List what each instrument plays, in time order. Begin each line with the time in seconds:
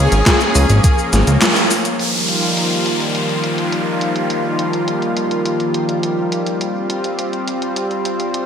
Already playing: analog synth pad F3 A#3 C#4, supersaw synth G#4, string machine G#4
0.12 analog synth bass G#1, closed hi-hat, shaker
0.26 kick, snare, clap, closed hi-hat, shaker
0.41 closed hi-hat, shaker
0.55 analog synth bass C#2, open hi-hat, shaker
0.70 analog synth bass G#1, closed hi-hat, shaker
0.84 kick, closed hi-hat, shaker
0.98 shaker
1.13 analog synth bass G#1, snare, closed hi-hat, shaker
1.27 analog synth bass C#2, closed hi-hat, shaker
1.42 snare, clap, closed hi-hat, shaker
1.56 closed hi-hat, shaker
1.71 open hi-hat, shaker
1.85 closed hi-hat, shaker
1.99 analog synth pad D#3 F3 G3 A#3 F4, closed hi-hat, downlifter
2.28 closed hi-hat
2.43 closed hi-hat
2.57 closed hi-hat
2.71 closed hi-hat
2.86 closed hi-hat
3.00 closed hi-hat
3.15 closed hi-hat
3.29 closed hi-hat
3.44 closed hi-hat
3.58 closed hi-hat
3.72 closed hi-hat
4.01 closed hi-hat
4.16 closed hi-hat
4.30 closed hi-hat
4.59 closed hi-hat
4.73 closed hi-hat
4.88 closed hi-hat
5.02 closed hi-hat
5.17 closed hi-hat
5.31 closed hi-hat
5.46 closed hi-hat
5.60 closed hi-hat
5.74 closed hi-hat
5.89 closed hi-hat
6.03 closed hi-hat
6.32 closed hi-hat
6.47 closed hi-hat
6.61 analog synth pad C4 F4, closed hi-hat
6.90 closed hi-hat
7.04 closed hi-hat
7.19 closed hi-hat
7.33 closed hi-hat
7.48 closed hi-hat
7.62 closed hi-hat
7.76 closed hi-hat
7.91 closed hi-hat
8.05 closed hi-hat
8.20 closed hi-hat
8.34 closed hi-hat